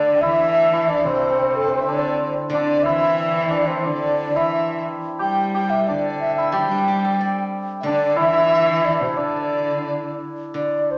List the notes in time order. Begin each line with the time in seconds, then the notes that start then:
Already playing: D3 D4 E4 A4 D5
0.15 G5
0.20 E3 E4 E5
0.73 E4
0.87 D4 D5
1.05 C3 C4 C5
1.15 C4
1.22 C4
1.29 C4
1.35 C4
1.42 C4
1.46 C5
1.50 C4 A4
1.56 C4 A4
1.69 C4 C5
1.79 E5
1.85 D3 D4 D5
2.50 D3 D5
2.55 D4
2.83 E3 E4 E5
3.35 E5
3.50 D4 D5
3.67 C4 C5
3.85 D3 D4 D5
4.34 E3 E4 E5
5.19 G3 G4 G5
5.54 G4 G5
5.70 E5
5.87 D3 D4 D5
6.20 E5
6.35 E4 E5
6.52 G3 G4 G5
6.71 D4
6.88 G4
7.04 A4
7.21 D5
7.80 D3 D5 E5
7.85 D3 D4
8.16 E3 E4 E5
8.25 E4
8.33 E4
8.40 E4
8.46 E4
8.53 E4
8.67 E4
8.82 D5 E5
9.01 C3 C5
9.16 D3 D4 D5
10.54 D3 D5
10.91 C5